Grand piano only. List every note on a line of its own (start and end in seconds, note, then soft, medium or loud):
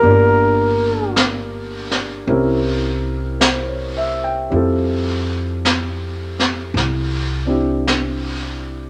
0.00 2.26 G3 soft
0.00 2.27 A#3 soft
0.04 2.29 D4 soft
0.04 2.30 F4 soft
0.11 2.27 A#4 medium
2.27 4.48 G3 soft
2.27 4.50 C4 soft
2.27 4.53 C#4 soft
2.27 4.51 E4 soft
2.27 4.53 A#4 medium
3.40 3.92 C5 soft
3.68 4.16 C#5 soft
3.97 4.32 E5 soft
4.24 4.63 G5 soft
4.50 8.90 G3 soft
4.50 7.44 C4 soft
4.50 7.47 E4 soft
4.50 8.90 F4 soft
4.56 8.90 A4 soft
7.45 8.90 C4 soft
7.45 8.90 D4 soft
7.45 8.90 E4 soft
7.45 8.90 G4 soft